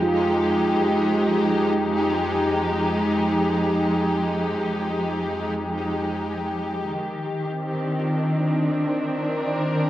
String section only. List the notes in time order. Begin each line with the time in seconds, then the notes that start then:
Already playing: F3 G#3 D#4 G4
6.94 D#3
7.51 C4
7.76 D4
9.21 A#4